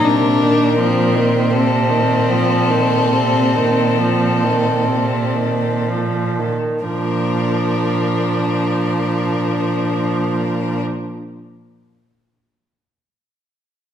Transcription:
Already playing: A#4
0.04 A#2 C3 D4
0.42 D#3
0.76 F3 C4
1.15 D#3
1.50 C3 A4
1.90 D#3
2.30 F3
2.70 D#3
3.12 C3
3.55 D#3
3.98 F3
4.43 D#3
4.88 C3
5.36 D#3
5.89 F3
6.39 D#3
6.85 A#2 F3 D4 A#4

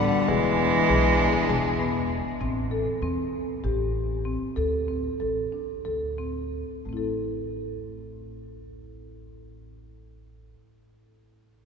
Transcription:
Already playing: D3 G3 B4 F#5
0.00 B3
0.27 E1 E3 G#3 D4 G#4
0.58 B3
0.89 B1 G#4
1.19 B3
1.49 E1 G#4
1.80 B3
2.41 A1 C4
2.71 A4
3.02 E2 C4
3.64 A1 G4
4.25 C4
4.56 D2 A4
4.88 C4
5.20 A1 A4
5.52 D4
5.85 D2 A4
6.18 C4
6.85 A1 A3 C4
6.93 E4
6.97 A4

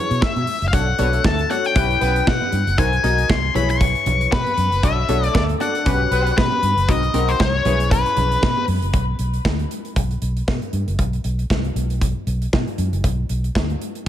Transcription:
Already playing: E4 G#4 B4 C#5
0.11 B2, closed hi-hat
0.22 E5, kick, snare, high conga
0.36 B2, closed hi-hat, high conga
0.47 open hi-hat
0.62 F#1, closed hi-hat
0.68 F5
0.73 B1 D4 F#4 A4 C#5 F#5, kick, closed hi-hat
0.98 B1 B3 D4 F#4 A4 B4 C#5, closed hi-hat, muted conga
1.13 A3 A4, closed hi-hat
1.24 D2 A3 A4 A5, kick, snare, high conga
1.39 closed hi-hat
1.50 D4 F#4 A4 C#5 F#5, closed hi-hat, muted conga
1.65 G5, closed hi-hat
1.75 B1 B3 C#4 E4 G4 B4, kick, closed hi-hat, muted conga
1.91 closed hi-hat
2.01 B1 B3 B4, closed hi-hat
2.16 closed hi-hat
2.27 B2 F#5, kick, snare, high conga
2.42 high conga
2.52 G2, closed hi-hat
2.67 F#1, closed hi-hat
2.78 B1 D#4 F#4 A#4 C5 G#5, kick, closed hi-hat
2.93 closed hi-hat
3.03 B1 D#4 F#4 A#4 D#5, closed hi-hat, muted conga
3.18 closed hi-hat
3.29 C2 C6, kick, snare, high conga
3.55 B1 E4 G#4 B4 C#5 B5, closed hi-hat, muted conga, low conga
3.69 C#6, closed hi-hat
3.81 kick, closed hi-hat
3.95 closed hi-hat
4.06 B1, closed hi-hat, low conga
4.21 closed hi-hat
4.32 B2 B4, kick, snare, high conga
4.46 closed hi-hat, high conga
4.57 F#2, closed hi-hat
4.71 F#1, closed hi-hat
4.83 B1 D4 F#4 A4 C#5 E5, kick, closed hi-hat
5.08 B1 B3 D4 F#4 A4 B4 C#5, closed hi-hat, muted conga
5.23 A3 A4, closed hi-hat
5.35 D2 A3 A4 D5, kick, snare, high conga
5.49 closed hi-hat
5.60 D4 F#4 A4 D5 F#5, closed hi-hat, muted conga
5.75 closed hi-hat
5.85 B1 B3 C#4 F#4 G4 B4, kick, closed hi-hat
6.11 B1 B3 B4, closed hi-hat
6.27 closed hi-hat
6.37 B2 B4, kick, snare, high conga
6.52 high conga
6.62 G2, closed hi-hat
6.77 F#1, closed hi-hat
6.88 B1 C4 D#4 F#4 A#4 D#5, kick, closed hi-hat
7.03 closed hi-hat
7.13 B1 C4 D#4 F#4 A#4, closed hi-hat, muted conga
7.29 C5, closed hi-hat
7.40 C2 C5, kick, snare, high conga
7.51 C#5
7.65 B1 C#4 E4 G#4 B4, closed hi-hat, muted conga, low conga
7.80 closed hi-hat
7.91 B4, kick, closed hi-hat, muted conga
8.06 closed hi-hat
8.17 B1, closed hi-hat, low conga
8.32 closed hi-hat
8.42 B2, kick, snare, high conga
8.57 high conga
8.68 F#2, open hi-hat
8.82 F#1, closed hi-hat
8.93 B1, kick, closed hi-hat
9.19 B1, closed hi-hat
9.33 closed hi-hat
9.45 D2, kick, snare
9.59 closed hi-hat
9.71 closed hi-hat
9.85 closed hi-hat
9.96 B1, kick, closed hi-hat
10.11 closed hi-hat
10.22 B1, closed hi-hat
10.37 closed hi-hat
10.48 B2, kick, snare
10.62 closed hi-hat
10.73 G2, closed hi-hat
10.87 F#1, closed hi-hat
10.99 B1, kick, closed hi-hat
11.13 closed hi-hat
11.24 B1, closed hi-hat
11.39 closed hi-hat
11.50 C2, kick, snare
11.64 closed hi-hat
11.75 B1, closed hi-hat
11.90 closed hi-hat
12.01 kick, closed hi-hat
12.27 B1, closed hi-hat
12.42 closed hi-hat
12.53 B2, kick, snare
12.68 closed hi-hat
12.78 F#2, closed hi-hat
12.92 F#1, closed hi-hat
13.04 B1, kick, closed hi-hat
13.29 B1, closed hi-hat
13.44 closed hi-hat
13.55 D2, kick, snare
13.70 closed hi-hat
13.81 closed hi-hat
13.95 closed hi-hat

